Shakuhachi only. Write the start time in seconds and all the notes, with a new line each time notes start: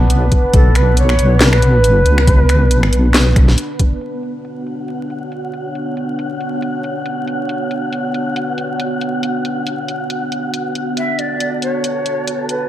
0.54 A4
0.76 B4
0.97 C#5
1.41 B4
10.97 E5
11.18 D5
11.62 C#5
12.49 B4